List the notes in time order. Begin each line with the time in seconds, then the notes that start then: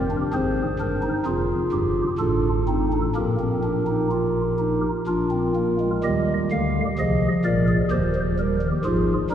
Already playing: F1 F2 G4 A#4
0.10 D4
0.33 G#1 G#2 C4 G#4 C5
0.79 G1 G2 D4 A#4
1.02 D#4
1.26 F1 F2 F4 G#4
1.72 G1 G2 G4
2.19 A1 A2 D4 F4 A4
2.68 C4 D#4
2.92 D4
3.15 A#1 A#2 A#3 G4 A#4
3.39 C4
3.63 D4
3.87 D#4
4.11 F4
4.58 D#4
5.07 A#1 A#2 D4 F4 A#4
5.31 C4
5.56 A#3
5.80 G#3
6.03 D#2 D#3 G3 G4 D#5
6.51 D2 D3 F5
6.99 C2 C3 F3 G#4 D#5
7.44 A#1 A#2 A#4 D5
7.68 G#4
7.91 D#1 D#2 D#3 G4 C5
8.15 F3
8.39 G3 A#4
8.62 D#3
8.84 G#1 G#2 F3 F4 G#4
9.30 G1 G2 G3 D#4 A#4